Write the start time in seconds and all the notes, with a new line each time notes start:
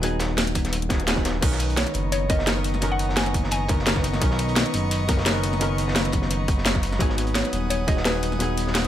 Already playing: D#1
0.02 F#3 B3 D#4 G#4, closed hi-hat
0.20 snare, closed hi-hat
0.38 snare, closed hi-hat
0.47 closed hi-hat
0.55 D#1, kick, closed hi-hat
0.65 snare, closed hi-hat
0.73 closed hi-hat
0.82 closed hi-hat
0.89 F#3 B3 D#4 G#4, kick, snare, closed hi-hat
1.00 closed hi-hat
1.07 F#3 B3 D#4 G#4, snare, closed hi-hat
1.16 kick, snare
1.25 snare, closed hi-hat
1.41 B1 D#3 B3 C#4 A#4 D#5 A#5 C#6, kick, closed hi-hat, crash
1.52 snare
1.60 closed hi-hat
1.70 closed hi-hat
1.77 C#5, snare, closed hi-hat
1.87 snare, closed hi-hat
1.94 F#1, closed hi-hat
2.12 C#5, closed hi-hat
2.29 D#3 B3 C#4 A#4 D#5, kick, closed hi-hat
2.39 snare
2.46 D#3 B3 C#4 A#4, snare, closed hi-hat
2.64 closed hi-hat
2.74 snare
2.81 D#3 B3 C#4 A#4, closed hi-hat
2.92 F#5
2.99 closed hi-hat
3.09 snare
3.17 G#5, snare, closed hi-hat
3.26 snare, closed hi-hat
3.34 F#1, kick, closed hi-hat
3.44 snare
3.51 G#5, closed hi-hat
3.68 D#3 B3 C#4 A#4, kick, closed hi-hat
3.79 snare
3.86 D#3 B3 C#4 A#4, snare, closed hi-hat
3.96 kick, snare
4.04 closed hi-hat
4.13 snare
4.20 B1 D#3 B3 C#4 A#4, kick, closed hi-hat
4.31 snare
4.39 closed hi-hat
4.49 closed hi-hat
4.56 snare, closed hi-hat
4.66 snare, closed hi-hat
4.74 F#1, closed hi-hat
4.91 closed hi-hat
5.08 D#3 B3 C#4 A#4, kick, closed hi-hat
5.17 snare
5.25 D#3 B3 C#4 A#4, snare, closed hi-hat
5.43 closed hi-hat
5.53 snare
5.60 D#3 B3 C#4 A#4, closed hi-hat
5.78 closed hi-hat
5.88 snare
5.95 snare, closed hi-hat
6.05 snare, closed hi-hat
6.12 F#1, kick, closed hi-hat
6.22 snare
6.31 closed hi-hat
6.48 kick, closed hi-hat
6.58 snare
6.65 snare, closed hi-hat
6.75 kick, snare
6.83 closed hi-hat
6.92 snare
6.99 G#1 F#3 B3 D#4 G#4 F#5 G#5 D#6, kick, closed hi-hat
7.09 snare
7.18 closed hi-hat
7.27 closed hi-hat
7.34 C#5, snare, closed hi-hat
7.45 snare, closed hi-hat
7.53 D#1, closed hi-hat
7.70 C#5, closed hi-hat
7.87 F#3 B3 D#4 G#4 D#5, kick, closed hi-hat
7.97 snare
8.05 F#3 B3 D#4 G#4 B4, snare, closed hi-hat
8.23 closed hi-hat
8.32 snare
8.39 F#3 B3 D#4 G#4, closed hi-hat
8.58 closed hi-hat
8.67 snare
8.75 snare, closed hi-hat
8.85 snare, closed hi-hat